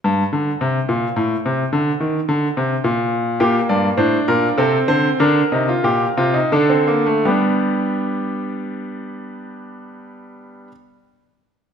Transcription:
<<
  \new Staff \with { instrumentName = "Grand piano" } { \time 3/4 \key g \minor \tempo 4 = 95 r2. | r2. | bes4 d'4 c'4 | d'8 ees'16 f'16 g'8 f'16 ees'16 d'16 c'16 bes16 a16 |
b2.~ | b2. | }
  \new Staff \with { instrumentName = "Grand piano" } { \clef bass \time 3/4 \key g \minor << { g,8 d8 c8 bes,8 a,8 c8 | d8 ees8 d8 c8 bes,4 | g'8 d''8 c''8 bes'8 a'8 c''8 | bes'2 a'4 |
<d' g'>2.~ | <d' g'>2. | } \\ { r2. | r2. | bes,8 g,8 a,8 bes,8 c8 d8 | d8 c8 bes,8 c8 d4 |
g2.~ | g2. | } >> }
>>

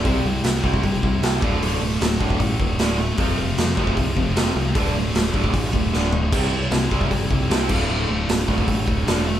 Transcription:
<<
  \new Staff \with { instrumentName = "Distorted electric guitar" } { \time 4/4 \key d \minor \tempo 4 = 153 <c g c' e' g' c''>2.~ <c g c' e' g' c''>8 <d, a, d a f'>8~ | <d, a, d a f'>2.~ <d, a, d a f'>8 r8 | <f, c f a c' f'>1 | <d, a, d a f'>1 |
<c g c' e' g' c''>2.~ <c g c' e' g' c''>8 <d, a, d a f'>8~ | <d, a, d a f'>2.~ <d, a, d a f'>8 r8 | }
  \new Staff \with { instrumentName = "Overdriven electric guitar" } { \clef bass \time 4/4 \key d \minor <c g c'>8 <c g>8 <c g>8 <c g c'>8 <c g>8 <c g>8 <c g c'>8 <d, a, d>8 | <d, a, d>8 <d, a,>8 <d, a,>8 <d, a, d>8 <d, a,>8 <d, a,>8 <d, a, d>8 <d, a,>8 | <f, c f>8 <f, c>8 <f, c>8 <f, c f>8 <f, c>8 <f, c>8 <f, c f>8 <f, c>8 | <d, a, d>8 <d, a,>8 <d, a,>8 <d, a, d>8 <d, a,>8 <d, a,>8 <d, a, d>8 <d, a,>8 |
<c g c'>8 <c g>8 <c g>8 <c g c'>8 <c g>8 <c g>8 <c g c'>8 <d, a, d>8 | <d, a, d>8 <d, a,>8 <d, a,>8 <d, a, d>8 <d, a,>8 <d, a,>8 <d, a, d>8 <d, a,>8 | }
  \new Staff \with { instrumentName = "Overdriven electric guitar" } { \clef bass \time 4/4 \key d \minor <c g c'>8 <c g>8 <c g>8 <c g c'>8 <c g>8 <c g>8 <c g c'>8 <d, a, d>8 | <d, a, d>8 <d, a,>8 <d, a,>8 <d, a, d>8 <d, a,>8 <d, a,>8 <d, a, d>8 <d, a,>8 | <f, c f>8 <f, c>8 <f, c>8 <f, c f>8 <f, c>8 <f, c>8 <f, c f>8 <f, c>8 | <d, a, d>8 <d, a,>8 <d, a,>8 <d, a, d>8 <d, a,>8 <d, a,>8 <d, a, d>8 <d, a,>8 |
<c g c'>8 <c g>8 <c g>8 <c g c'>8 <c g>8 <c g>8 <c g c'>8 <d, a, d>8 | <d, a, d>8 <d, a,>8 <d, a,>8 <d, a, d>8 <d, a,>8 <d, a,>8 <d, a, d>8 <d, a,>8 | }
  \new Staff \with { instrumentName = "Picked electric bass" } { \clef bass \time 4/4 \key d \minor c,8 c,8 c,8 c,8 g,,8 c,8 c,8 d,,8 | d,,8 d,,8 d,,8 d,,8 a,,8 d,,8 d,,4 | f,,8 f,,8 f,8 f,,8 c,8 f,,8 f,,8 c,8 | d,,8 d,,8 d,,8 d,,8 a,,8 d,,8 d,,4 |
c,8 c,8 c,8 c,8 g,,8 c,8 c,8 d,,8 | d,,8 d,,8 d,,8 d,,8 a,,8 d,,8 e,,4 | }
  \new DrumStaff \with { instrumentName = "Drums" } \drummode { \time 4/4 <hho bd>4 <hho sn>8 bd16 bd16 <hho bd>8 bd8 <hho sn>8 bd8 | hho4 <hho sn>8 bd16 bd16 <hho bd>8 bd8 <hho sn>4 | <hho bd>4 <hho sn>8 bd16 bd16 <hho bd>8 bd8 <hho sn>4 | <hho bd>4 <hho sn>8 bd16 bd16 <hho bd>8 bd8 sn8 tomfh8 |
<cymc bd>4 <hho sn>8 bd16 bd16 <hho bd>8 bd8 <hho sn>8 <cymc bd>8 | r4 <hho sn>8 bd16 bd16 <hho bd>8 bd8 <hho sn>4 | }
>>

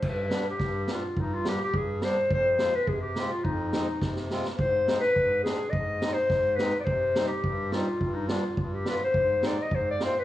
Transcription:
<<
  \new Staff \with { instrumentName = "Clarinet" } { \time 2/4 \tempo 4 = 105 b'8. g'8. f'8 | ees'16 f'16 g'16 g'16 aes'8 c''8 | c''8. b'16 aes'16 g'8 f'16 | ees'4. r8 |
c''8. b'8. aes'8 | ees''8. c''8. b'16. d''32 | c''8. g'8. f'8~ | f'16 ees'16 f'8 f'16 g'16 b'16 c''16~ |
c''8 d''16 ees''16 c''16 d''16 c''16 b'16 | }
  \new Staff \with { instrumentName = "Accordion" } { \time 2/4 r8 <g b d'>16 r8. <g b d'>16 r16 | r8 <g b d'>16 r8. <g b d'>16 r16 | r8 <aes c' f'>16 r8. <aes c' f'>16 r16 | r8 <aes c' ees'>16 r8. <aes c' f'>16 r16 |
r8 <aes c' ees'>16 r8. <aes c' d'>16 r16 | r8 <aes c' ees'>16 r8. <aes c' ees'>16 r16 | r8 <g c' ees'>16 r8. <g c' ees'>16 r16 | r8 <g b d'>16 r8. <g b f'>16 r16 |
r8 <aes c' ees'>16 r8. <aes c' f'>16 r16 | }
  \new Staff \with { instrumentName = "Accordion" } { \clef bass \time 2/4 g,4 g,4 | g,4 g,4 | f,4 c4 | f,4 c4 |
aes,4 aes,4 | aes,4 aes,4 | c4 g,4 | g,4 g,4 |
aes,4 aes,4 | }
  \new DrumStaff \with { instrumentName = "Drums" } \drummode { \time 2/4 <cymc bd>8 sn8 <bd sn>8 sn8 | bd8 sn8 bd8 sn8 | bd8 sn8 bd8 sn8 | bd8 sn8 <bd sn>16 sn16 sn16 sn16 |
bd8 sn16 sn16 bd8 sn8 | bd8 sn8 <bd sn>8 sn8 | bd8 sn8 bd8 sn8 | bd8 sn8 bd8 sn8 |
bd8 sn8 bd8 sn8 | }
>>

